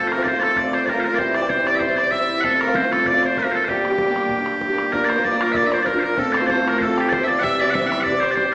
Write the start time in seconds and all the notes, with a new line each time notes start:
Already playing: F3 A3 C4 F4 A4
0.08 A#4 C5
0.12 A#4, bodhran
0.17 F3 A3 C4 F4
0.23 C5 D5, bodhran
0.27 C5
0.33 F3 A3 C4 F4
0.39 A4 D5, bodhran
0.56 D5, bodhran
0.64 A3 C4 F4
0.73 C5, bodhran
0.85 A#4 D5, bodhran
0.95 A3 C4 F4
1.00 C5
1.05 A#4
1.15 E3 C5 D5, bodhran
1.19 G3 C4 E4
1.34 D5, bodhran
1.41 C3 E3 G3 C4 E4
1.48 C5, bodhran
1.57 C3 E3 G3 C4 E4
1.67 D5, bodhran
1.75 C5 E5
1.80 C5, bodhran
1.88 C4 E4
1.92 G3
1.96 D5, bodhran
2.11 E5, bodhran
2.20 G3 C4 E4
2.40 F3 C4 A4 F#5, bodhran
2.44 A3 F4 A4
2.60 A#4, bodhran
2.67 F3 A3 C4 F4
2.75 C5, bodhran
2.83 F3 A3 C4 F4
2.92 A4, bodhran
3.04 D5, bodhran
3.14 A3 C4 F4
3.23 C5, bodhran
3.37 A#4, bodhran
3.44 A3 C4 F4
3.51 A4 C5
3.65 G3 C5, bodhran
3.69 A#3 D4 G4
3.85 bodhran
3.91 G3 A#3 D4 G4
3.98 bodhran
4.08 G3 A#3 D4 G4
4.16 bodhran
4.29 bodhran
4.38 A#3 D4 G4
4.46 bodhran
4.61 bodhran
4.70 A#3 D4 G4
4.78 bodhran
4.92 A#3 D4 F4 A#4, bodhran
5.05 C5 D5
5.10 C5, bodhran
5.17 A#3 D4 F4 A#4 C5
5.24 D5, bodhran
5.31 A#3 D4 F4 A#4
5.41 A#4, bodhran
5.52 D5 E5, bodhran
5.63 D4 F4 A#4 E5
5.70 C5 D5, bodhran
5.82 A#4 D5
5.86 A#4, bodhran
5.93 D4 F4 A#4
5.99 A#4 C5
6.16 A3 C4 F4 A4, bodhran
6.32 C5 D5, bodhran
6.37 A4 C5
6.41 A2 A3 C4 F4
6.46 C5 D5, bodhran
6.55 A2 A3 C4 F4 A4
6.66 A#4, bodhran
6.78 A4 C5, bodhran
6.87 C4 F4 A4
6.96 G4, bodhran
7.00 G4
7.09 C5 D5, bodhran
7.17 C4 F4 A4
7.24 D5 E5
7.29 D5
7.39 E3 G3 C4 E5 F#5
7.44 G4, bodhran
7.60 G4 D5
7.64 C3 E3 G3 C4
7.70 E5 F#5
7.74 E5, bodhran
7.80 C3 E3 G3 C4 G4
7.86 E5 F#5
7.92 bodhran
8.00 D5 F#5
8.06 D5, bodhran
8.12 G3 C4 G4
8.20 C5, bodhran
8.31 D5
8.35 C5, bodhran
8.43 G3 C4 G4